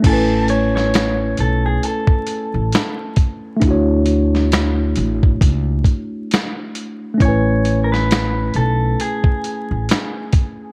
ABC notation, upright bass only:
X:1
M:4/4
L:1/16
Q:"Swing 16ths" 1/4=67
K:A
V:1 name="Upright bass" clef=bass
A,,,6 B,,,2 z3 A,,, z4 | D,,6 A,,,2 C,,2 z6 | A,,,6 B,,,2 z3 A,,, z4 |]